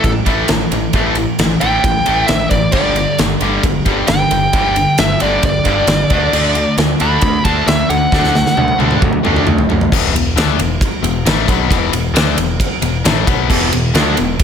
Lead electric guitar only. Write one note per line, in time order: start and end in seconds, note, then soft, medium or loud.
0.00 0.11 A4 loud
1.61 2.27 G5 loud
2.27 2.50 E5 medium
2.50 2.72 D5 medium
2.73 3.17 D5 loud
4.08 4.95 G5 loud
5.00 5.21 E5 loud
5.22 5.43 D5 medium
5.45 6.75 D5 loud
7.02 7.44 B5 loud
7.44 7.66 A5 medium
7.67 7.89 E5 loud
7.89 8.77 F#5 loud